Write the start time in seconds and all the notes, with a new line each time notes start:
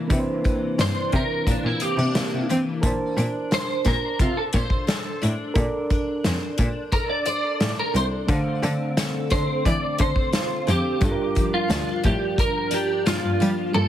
Already playing: E3 A#3 D4
0.08 C3 A#3 D4 E4, kick, closed hi-hat
0.13 B4
0.19 C5
0.44 E3, kick, closed hi-hat
0.79 G2 D4 C5, snare, closed hi-hat
1.12 C3 E3 A#4, kick, closed hi-hat
1.47 A#2 A#3 D4, kick, closed hi-hat
1.64 A#2 E4
1.80 C4 G4, closed hi-hat
1.97 C3 D4
2.15 C3 A#3, snare, closed hi-hat
2.32 C3
2.49 E3 C4, closed hi-hat
2.82 A#2 D4 A#4 A5, kick, closed hi-hat
2.87 C5
3.17 A#2 D4, closed hi-hat
3.51 C5, snare, closed hi-hat
3.85 A#2 D4 A#4, kick, snare, closed hi-hat
4.19 C3 F4 A4, kick, closed hi-hat
4.37 A4
4.53 A#2 C5, kick, closed hi-hat
4.70 kick
4.87 A4, snare, closed hi-hat
5.22 A2 D4, closed hi-hat
5.54 A#2 D4 A4 A#4, kick, closed hi-hat
5.59 D5
5.90 D4, kick, closed hi-hat
6.24 F2 C5, snare, closed hi-hat
6.58 A#2 D4, kick, closed hi-hat
6.92 A4 A#4, kick, closed hi-hat
7.10 D5
7.26 C5 D5, closed hi-hat
7.60 A2 A4, snare, closed hi-hat
7.79 A#4
7.94 C2 D4 C5, closed hi-hat
8.27 D3 A3 D4 F5, kick, closed hi-hat
8.32 C5
8.63 D3 C4, closed hi-hat
8.97 A4, snare, closed hi-hat
9.30 D3 C4 C5, kick, snare, closed hi-hat
9.65 E3 D5, kick, closed hi-hat
9.98 D3 A4 C5, kick, closed hi-hat
10.16 kick
10.33 F4, snare, closed hi-hat
10.67 F2 C4 G4, closed hi-hat
11.00 G2 G3 D4 F4, kick, closed hi-hat
11.05 A4
11.11 A#4
11.35 F3, kick, closed hi-hat
11.54 F4
11.69 D2 D4, snare, closed hi-hat
12.03 A2 F3 G4, kick, closed hi-hat
12.38 A#4, kick, closed hi-hat
12.71 D4 G4, closed hi-hat
13.06 G2 A#3 F4, snare, closed hi-hat
13.23 G2
13.40 F3 G3, closed hi-hat
13.72 G2 G3 A#3 F4 A4
13.77 A5